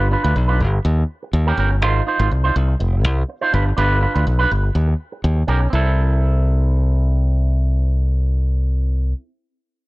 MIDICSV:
0, 0, Header, 1, 4, 480
1, 0, Start_track
1, 0, Key_signature, 0, "major"
1, 0, Tempo, 488202
1, 1791, Time_signature, 4, 2, 24, 8
1, 9710, End_track
2, 0, Start_track
2, 0, Title_t, "Clean electric guitar"
2, 0, Program_c, 0, 27
2, 110, Note_on_c, 0, 62, 58
2, 121, Note_on_c, 0, 65, 59
2, 129, Note_on_c, 0, 71, 66
2, 221, Note_off_c, 0, 71, 0
2, 229, Note_off_c, 0, 65, 0
2, 233, Note_on_c, 0, 71, 64
2, 239, Note_off_c, 0, 62, 0
2, 241, Note_on_c, 0, 65, 56
2, 251, Note_on_c, 0, 62, 52
2, 339, Note_off_c, 0, 62, 0
2, 343, Note_off_c, 0, 65, 0
2, 352, Note_off_c, 0, 71, 0
2, 471, Note_on_c, 0, 71, 75
2, 482, Note_on_c, 0, 65, 68
2, 490, Note_on_c, 0, 62, 61
2, 583, Note_off_c, 0, 62, 0
2, 589, Note_off_c, 0, 65, 0
2, 593, Note_off_c, 0, 71, 0
2, 1442, Note_on_c, 0, 70, 78
2, 1451, Note_on_c, 0, 67, 88
2, 1459, Note_on_c, 0, 61, 65
2, 1543, Note_off_c, 0, 61, 0
2, 1550, Note_off_c, 0, 67, 0
2, 1555, Note_on_c, 0, 61, 63
2, 1559, Note_off_c, 0, 70, 0
2, 1562, Note_on_c, 0, 67, 65
2, 1571, Note_on_c, 0, 70, 71
2, 1664, Note_off_c, 0, 70, 0
2, 1678, Note_off_c, 0, 67, 0
2, 1716, Note_off_c, 0, 61, 0
2, 1788, Note_on_c, 0, 63, 90
2, 1800, Note_on_c, 0, 65, 91
2, 1809, Note_on_c, 0, 72, 93
2, 1984, Note_off_c, 0, 63, 0
2, 1991, Note_off_c, 0, 65, 0
2, 1995, Note_off_c, 0, 72, 0
2, 2032, Note_on_c, 0, 63, 70
2, 2041, Note_on_c, 0, 65, 69
2, 2049, Note_on_c, 0, 72, 71
2, 2144, Note_off_c, 0, 72, 0
2, 2156, Note_off_c, 0, 65, 0
2, 2156, Note_on_c, 0, 72, 67
2, 2163, Note_off_c, 0, 63, 0
2, 2168, Note_on_c, 0, 65, 57
2, 2175, Note_on_c, 0, 63, 53
2, 2264, Note_off_c, 0, 63, 0
2, 2269, Note_off_c, 0, 65, 0
2, 2274, Note_off_c, 0, 72, 0
2, 2398, Note_on_c, 0, 72, 81
2, 2406, Note_on_c, 0, 65, 72
2, 2412, Note_on_c, 0, 63, 63
2, 2502, Note_off_c, 0, 63, 0
2, 2506, Note_off_c, 0, 65, 0
2, 2514, Note_off_c, 0, 72, 0
2, 3356, Note_on_c, 0, 72, 91
2, 3365, Note_on_c, 0, 65, 73
2, 3372, Note_on_c, 0, 63, 66
2, 3464, Note_off_c, 0, 63, 0
2, 3465, Note_off_c, 0, 65, 0
2, 3468, Note_on_c, 0, 62, 76
2, 3476, Note_on_c, 0, 65, 70
2, 3480, Note_off_c, 0, 72, 0
2, 3484, Note_on_c, 0, 71, 76
2, 3587, Note_off_c, 0, 71, 0
2, 3603, Note_off_c, 0, 65, 0
2, 3633, Note_off_c, 0, 62, 0
2, 3703, Note_on_c, 0, 62, 88
2, 3714, Note_on_c, 0, 65, 83
2, 3722, Note_on_c, 0, 71, 101
2, 3903, Note_off_c, 0, 62, 0
2, 3908, Note_off_c, 0, 65, 0
2, 3912, Note_off_c, 0, 71, 0
2, 3942, Note_on_c, 0, 62, 61
2, 3952, Note_on_c, 0, 65, 62
2, 3959, Note_on_c, 0, 71, 64
2, 4064, Note_off_c, 0, 71, 0
2, 4075, Note_off_c, 0, 65, 0
2, 4076, Note_on_c, 0, 71, 63
2, 4080, Note_off_c, 0, 62, 0
2, 4087, Note_on_c, 0, 65, 65
2, 4092, Note_on_c, 0, 62, 54
2, 4176, Note_off_c, 0, 62, 0
2, 4184, Note_off_c, 0, 65, 0
2, 4188, Note_off_c, 0, 71, 0
2, 4313, Note_on_c, 0, 71, 85
2, 4322, Note_on_c, 0, 65, 65
2, 4332, Note_on_c, 0, 62, 64
2, 4424, Note_off_c, 0, 62, 0
2, 4429, Note_off_c, 0, 65, 0
2, 4437, Note_off_c, 0, 71, 0
2, 5382, Note_on_c, 0, 61, 80
2, 5390, Note_on_c, 0, 67, 90
2, 5399, Note_on_c, 0, 70, 103
2, 5497, Note_off_c, 0, 70, 0
2, 5509, Note_off_c, 0, 67, 0
2, 5582, Note_off_c, 0, 61, 0
2, 5606, Note_on_c, 0, 60, 85
2, 5634, Note_on_c, 0, 64, 89
2, 5654, Note_on_c, 0, 69, 95
2, 9047, Note_off_c, 0, 60, 0
2, 9075, Note_off_c, 0, 64, 0
2, 9096, Note_off_c, 0, 69, 0
2, 9710, End_track
3, 0, Start_track
3, 0, Title_t, "Fingered electric bass"
3, 0, Program_c, 1, 33
3, 0, Note_on_c, 1, 31, 108
3, 141, Note_off_c, 1, 31, 0
3, 240, Note_on_c, 1, 38, 92
3, 323, Note_off_c, 1, 38, 0
3, 352, Note_on_c, 1, 35, 91
3, 593, Note_on_c, 1, 31, 84
3, 608, Note_off_c, 1, 35, 0
3, 770, Note_off_c, 1, 31, 0
3, 833, Note_on_c, 1, 39, 103
3, 1010, Note_off_c, 1, 39, 0
3, 1311, Note_on_c, 1, 39, 104
3, 1488, Note_off_c, 1, 39, 0
3, 1548, Note_on_c, 1, 31, 86
3, 1789, Note_off_c, 1, 31, 0
3, 1789, Note_on_c, 1, 32, 117
3, 1967, Note_off_c, 1, 32, 0
3, 2158, Note_on_c, 1, 32, 99
3, 2241, Note_off_c, 1, 32, 0
3, 2275, Note_on_c, 1, 36, 77
3, 2451, Note_off_c, 1, 36, 0
3, 2515, Note_on_c, 1, 36, 98
3, 2691, Note_off_c, 1, 36, 0
3, 2755, Note_on_c, 1, 29, 96
3, 2994, Note_off_c, 1, 29, 0
3, 2994, Note_on_c, 1, 36, 100
3, 3171, Note_off_c, 1, 36, 0
3, 3477, Note_on_c, 1, 31, 92
3, 3653, Note_off_c, 1, 31, 0
3, 3713, Note_on_c, 1, 31, 111
3, 3984, Note_off_c, 1, 31, 0
3, 4085, Note_on_c, 1, 38, 84
3, 4166, Note_off_c, 1, 38, 0
3, 4197, Note_on_c, 1, 35, 92
3, 4372, Note_off_c, 1, 35, 0
3, 4438, Note_on_c, 1, 31, 90
3, 4614, Note_off_c, 1, 31, 0
3, 4670, Note_on_c, 1, 39, 98
3, 4848, Note_off_c, 1, 39, 0
3, 5153, Note_on_c, 1, 39, 98
3, 5330, Note_off_c, 1, 39, 0
3, 5387, Note_on_c, 1, 35, 84
3, 5567, Note_off_c, 1, 35, 0
3, 5633, Note_on_c, 1, 36, 99
3, 8970, Note_off_c, 1, 36, 0
3, 9710, End_track
4, 0, Start_track
4, 0, Title_t, "Muted clean electric guitar strokes"
4, 350, Note_on_c, 9, 29, 38
4, 449, Note_off_c, 9, 29, 0
4, 595, Note_on_c, 9, 29, 53
4, 693, Note_off_c, 9, 29, 0
4, 722, Note_on_c, 9, 29, 52
4, 820, Note_off_c, 9, 29, 0
4, 836, Note_on_c, 9, 29, 39
4, 935, Note_off_c, 9, 29, 0
4, 965, Note_on_c, 9, 29, 43
4, 1063, Note_off_c, 9, 29, 0
4, 1207, Note_on_c, 9, 29, 52
4, 1305, Note_off_c, 9, 29, 0
4, 1319, Note_on_c, 9, 29, 41
4, 1417, Note_off_c, 9, 29, 0
4, 1676, Note_on_c, 9, 29, 41
4, 1774, Note_off_c, 9, 29, 0
4, 2276, Note_on_c, 9, 29, 33
4, 2374, Note_off_c, 9, 29, 0
4, 2513, Note_on_c, 9, 29, 42
4, 2612, Note_off_c, 9, 29, 0
4, 2637, Note_on_c, 9, 29, 43
4, 2735, Note_off_c, 9, 29, 0
4, 2750, Note_on_c, 9, 29, 44
4, 2849, Note_off_c, 9, 29, 0
4, 2879, Note_on_c, 9, 29, 44
4, 2977, Note_off_c, 9, 29, 0
4, 3122, Note_on_c, 9, 29, 52
4, 3220, Note_off_c, 9, 29, 0
4, 3230, Note_on_c, 9, 29, 40
4, 3328, Note_off_c, 9, 29, 0
4, 3598, Note_on_c, 9, 29, 48
4, 3697, Note_off_c, 9, 29, 0
4, 4188, Note_on_c, 9, 29, 34
4, 4286, Note_off_c, 9, 29, 0
4, 4436, Note_on_c, 9, 29, 51
4, 4534, Note_off_c, 9, 29, 0
4, 4557, Note_on_c, 9, 29, 42
4, 4656, Note_off_c, 9, 29, 0
4, 4672, Note_on_c, 9, 29, 41
4, 4770, Note_off_c, 9, 29, 0
4, 4795, Note_on_c, 9, 29, 52
4, 4893, Note_off_c, 9, 29, 0
4, 5037, Note_on_c, 9, 29, 59
4, 5135, Note_off_c, 9, 29, 0
4, 5150, Note_on_c, 9, 29, 47
4, 5249, Note_off_c, 9, 29, 0
4, 5272, Note_on_c, 9, 29, 55
4, 5371, Note_off_c, 9, 29, 0
4, 5509, Note_on_c, 9, 29, 46
4, 5607, Note_off_c, 9, 29, 0
4, 9710, End_track
0, 0, End_of_file